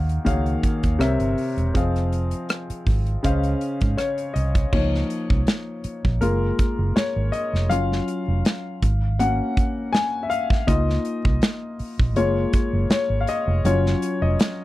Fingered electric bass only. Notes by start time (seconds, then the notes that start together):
Already playing: D#2
0.27 C#2
0.84 D#2
0.99 C2
1.20 G1
1.57 E1
1.75 F1
2.70 muted fingered electric bass stroke
2.87 G#1
3.25 C#2
3.82 G#2
4.36 C2
4.73 C#2
5.30 C2
5.85 muted fingered electric bass stroke
6.05 A#1
6.21 F#1
6.79 F#1
7.16 G#1
7.53 F1
7.71 F#1
8.28 F1
8.82 G#1
10.68 C#2
11.25 C2
11.80 muted fingered electric bass stroke
12.00 A#1
12.15 F#1
12.73 F#1
12.89 muted fingered electric bass stroke
13.10 G#1
13.47 F1
13.64 F#1
14.22 F1